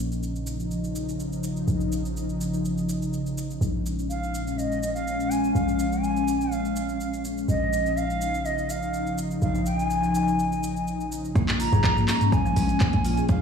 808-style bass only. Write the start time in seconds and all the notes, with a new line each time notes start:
Already playing: A#1
1.68 A#1
3.61 A#1
5.55 A#1
7.48 A#1
9.42 A#1
11.36 A#1
11.72 A#1
12.56 A#1
12.81 A#1
13.29 A#1